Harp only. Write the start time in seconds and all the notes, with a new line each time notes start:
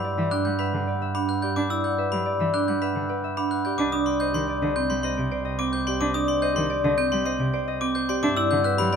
Already playing: G4 E5 F#5 G5
0.04 D5
0.18 E5
0.32 G5
0.46 F#5
0.60 E5
0.74 F#5
0.88 B4
1.02 E5
1.15 F#5
1.30 B4
1.43 G4
1.57 E5
1.71 D5
1.85 F#5
1.99 E5
2.12 G4
2.26 D5
2.40 E5
2.54 G5
2.68 F#5
2.82 E5
2.95 F#5
3.10 B4
3.24 E5
3.38 F#5
3.52 B4
3.66 G4
3.80 D#5
3.94 D5
4.07 G5
4.21 D#5
4.35 G4
4.49 D5
4.62 D#5
4.76 C6
4.90 G5
5.04 D#5
5.18 G5
5.32 C5
5.45 D#5
5.59 G5
5.74 C5
5.88 G4
6.01 D#5
6.15 D5
6.29 G5
6.43 D#5
6.56 G4
6.70 D5
6.84 D#5
6.98 C6
7.12 G5
7.25 D#5
7.40 G5
7.53 C5
7.68 D#5
7.81 G5
7.96 C5
8.09 G4
8.23 E5
8.37 D5
8.51 F#5
8.65 E5
8.79 G4